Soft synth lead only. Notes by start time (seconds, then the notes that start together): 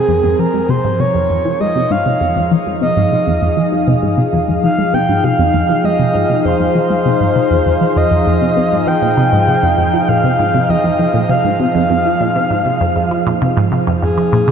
Already playing: G#4
0.40 A#4
0.70 C5
1.00 C#5
1.61 D#5
1.92 F5
2.82 D#5
4.64 F5
4.94 G5
5.24 F5
5.85 D#5
6.46 C5
6.76 C5
7.97 D#5
8.87 G5
10.09 F5
10.70 D#5
11.30 F5
11.61 F5
14.03 G#4